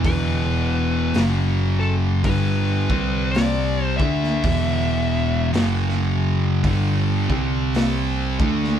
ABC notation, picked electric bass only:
X:1
M:4/4
L:1/8
Q:"Swing" 1/4=55
K:Em
V:1 name="Picked electric bass" clef=bass
E,,,2 F,,,2 G,,, C,,2 D,, | E,,,2 F,,,2 G,,, C,,2 D,, |]